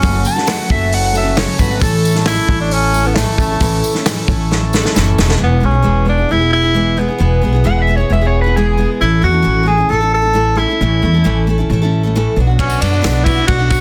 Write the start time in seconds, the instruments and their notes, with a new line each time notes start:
Already playing: tenor saxophone C#4, harmonium F#4 A4 A5
0.02 upright bass F#1, steel-string acoustic guitar F#2 C#3 F#3 A3 C#4 F#4, harmonium B4, kick, open hi-hat, tambourine
0.25 electric slide guitar A5, tambourine
0.36 steel-string acoustic guitar F#3 A3 C#4 F#4, snare
0.46 steel-string acoustic guitar F#2 C#3 F#3 A3 C#4 F#4, electric slide guitar F#5, snare, open hi-hat, tambourine
0.68 upright bass F#1, steel-string acoustic guitar F#3 A3 C#4 F#4, electric slide guitar E5, kick
0.92 electric slide guitar F#5, open hi-hat, tambourine
1.11 steel-string acoustic guitar F#3 A3 C#4 F#4, tambourine
1.18 electric slide guitar E5
1.23 steel-string acoustic guitar F#3 A3 C#4 F#4
1.35 steel-string acoustic guitar F#2 C#3 F#3 A3 C#4 F#4, electric slide guitar C#5, snare, open hi-hat, tambourine
1.58 upright bass G#1, steel-string acoustic guitar F#3 A3 C#4 F#4, electric slide guitar B4, kick, tambourine
1.70 steel-string acoustic guitar F#3 A3 C#4 F#4
1.80 upright bass A1, steel-string acoustic guitar A2 E3 A3 C#4 E4 A4, harmonium E4 A4 C#5, electric slide guitar A4, kick, open hi-hat, tambourine
2.05 tambourine
2.15 steel-string acoustic guitar A3 C#4 E4 A4, snare
2.25 steel-string acoustic guitar A2 E3 A3 C#4 E4 A4, tenor saxophone E4, snare, open hi-hat, tambourine
2.48 upright bass A1, steel-string acoustic guitar A3 C#4 E4 A4, kick
2.61 tenor saxophone D4
2.71 tenor saxophone C#4, open hi-hat, tambourine
2.92 steel-string acoustic guitar A3 C#4 E4 A4, tambourine
3.04 steel-string acoustic guitar A3 C#4 E4 A4, tenor saxophone B3
3.15 steel-string acoustic guitar A2 E3 A3 C#4 E4 A4, tenor saxophone A3, snare, open hi-hat, tambourine
3.37 upright bass A1, tenor saxophone A3, steel-string acoustic guitar A3 C#4, kick, tambourine
3.42 steel-string acoustic guitar E4 A4
3.52 steel-string acoustic guitar A3 C#4 E4 A4
3.60 upright bass A1, steel-string acoustic guitar A2 E3 A3 C#4 E4 A4, kick, open hi-hat, tambourine
3.84 tambourine
3.94 steel-string acoustic guitar A3 C#4 E4 A4, snare
4.06 steel-string acoustic guitar A2 E3 A3 C#4 E4 A4, snare, open hi-hat, tambourine
4.28 upright bass A1, steel-string acoustic guitar A3 C#4 E4, kick, tambourine
4.32 steel-string acoustic guitar A4
4.51 snare, tambourine
4.73 steel-string acoustic guitar A3 C#4 E4 A4, snare, tambourine
4.83 steel-string acoustic guitar A3 C#4 E4 A4, snare
4.94 upright bass F#1, steel-string acoustic guitar A2 E3 A3 C#4 E4 A4, snare, tambourine
5.18 upright bass E1, steel-string acoustic guitar A3 C#4 E4 A4, snare, tambourine
5.28 steel-string acoustic guitar A3 C#4 E4 A4, snare
5.36 steel-string acoustic guitar E3 G#3 B3 E4 G#4
5.41 upright bass E1, tenor saxophone B3
5.60 upright bass B1, steel-string acoustic guitar G#3 B3 E4 G#4
5.65 tenor saxophone C#4
5.71 steel-string acoustic guitar B3 E4 G#4
5.83 upright bass E1, steel-string acoustic guitar E3 G#3 B3 E4 G#4
6.05 steel-string acoustic guitar G#3 B3 E4 G#4
6.09 tenor saxophone D4
6.18 steel-string acoustic guitar B3 E4 G#4
6.29 upright bass E1, steel-string acoustic guitar G#3 B3 E4 G#4, tenor saxophone E4
6.39 steel-string acoustic guitar B3 E4 G#4
6.53 tenor saxophone E4
6.62 steel-string acoustic guitar B3 E4 G#4
6.74 steel-string acoustic guitar E3 G#3 B3 E4 G#4
6.97 steel-string acoustic guitar G#3 B3 E4, tenor saxophone B3
7.01 steel-string acoustic guitar G#4
7.08 steel-string acoustic guitar B3 E4 G#4
7.18 upright bass E1, steel-string acoustic guitar E3 G#3 B3 E4 G#4
7.41 upright bass B1, steel-string acoustic guitar G#3 B3 E4 G#4
7.53 steel-string acoustic guitar B3 E4 G#4
7.64 upright bass E1, steel-string acoustic guitar E3 G#3 B3 E4 G#4, electric slide guitar F#5
7.82 electric slide guitar E5
7.87 steel-string acoustic guitar G#3 B3 E4 G#4
7.97 steel-string acoustic guitar B3 E4 G#4, electric slide guitar C#5
8.10 upright bass E1, steel-string acoustic guitar G#3 B3 E4 G#4, electric slide guitar E5
8.21 steel-string acoustic guitar B3 E4 G#4
8.26 electric slide guitar C#5
8.42 steel-string acoustic guitar G#4, electric slide guitar B4
8.46 steel-string acoustic guitar B3 E4
8.56 steel-string acoustic guitar E3 G#3 B3 E4 G#4, electric slide guitar G#4
8.77 steel-string acoustic guitar G#3 B3 E4 G#4
9.01 upright bass A1, steel-string acoustic guitar A2 E3 A3 C#4 E4 A4, tenor saxophone E4
9.22 upright bass E2, steel-string acoustic guitar A3 C#4 E4 A4, tenor saxophone F#4
9.31 steel-string acoustic guitar A3 C#4 E4 A4
9.42 upright bass A1, steel-string acoustic guitar A2 E3 A3 C#4 E4 A4
9.63 steel-string acoustic guitar A3 C#4 E4
9.67 tenor saxophone G#4, steel-string acoustic guitar A4
9.78 steel-string acoustic guitar A3 C#4 E4 A4
9.89 upright bass A1, steel-string acoustic guitar A3 C#4 E4, tenor saxophone A4
9.93 steel-string acoustic guitar A4
10.01 steel-string acoustic guitar A3 C#4 E4 A4
10.14 tenor saxophone A4
10.22 steel-string acoustic guitar A3 C#4 E4 A4
10.33 steel-string acoustic guitar A2 E3 A3 C#4 E4 A4
10.55 steel-string acoustic guitar A3 C#4 E4 A4, tenor saxophone E4
10.68 steel-string acoustic guitar A3 C#4 E4 A4
10.81 upright bass A1, steel-string acoustic guitar A2 E3 A3 C#4 E4 A4
11.02 upright bass E2, steel-string acoustic guitar A3 C#4 E4 A4
11.13 steel-string acoustic guitar A3 C#4 E4 A4
11.24 upright bass A1, steel-string acoustic guitar A2 E3 A3 C#4 E4 A4
11.47 steel-string acoustic guitar A3 C#4 E4 A4
11.58 steel-string acoustic guitar A3 C#4 E4 A4
11.70 upright bass A1, steel-string acoustic guitar A3 C#4 E4 A4
11.82 steel-string acoustic guitar A3 C#4 E4 A4
12.03 steel-string acoustic guitar A3 C#4 E4 A4
12.15 steel-string acoustic guitar A2 E3 A3 C#4 E4 A4
12.36 upright bass B1, steel-string acoustic guitar F#3 B3 D4 F#4
12.47 steel-string acoustic guitar D4 F#4
12.51 steel-string acoustic guitar B3
12.59 steel-string acoustic guitar B2 F#3 B3 D4 F#4, tenor saxophone C#4, harmonium F#4 B4 D5 B5, kick, ride
12.70 tambourine
12.81 upright bass F#2, steel-string acoustic guitar F#3 B3 D4 F#4, tenor saxophone D4, ride, tambourine
12.91 steel-string acoustic guitar B3 D4 F#4, tambourine
13.02 upright bass B1, steel-string acoustic guitar B2 F#3 B3 D4 F#4, snare, ride, tambourine
13.16 tambourine
13.24 steel-string acoustic guitar F#3 B3, tenor saxophone E4, kick, ride, tambourine
13.28 steel-string acoustic guitar D4 F#4
13.37 steel-string acoustic guitar B3 D4 F#4, tambourine
13.47 upright bass B1, steel-string acoustic guitar F#3 B3 D4 F#4, tenor saxophone F#4, kick, ride, tambourine
13.58 steel-string acoustic guitar B3 D4 F#4
13.70 tenor saxophone F#4, kick, ride, tambourine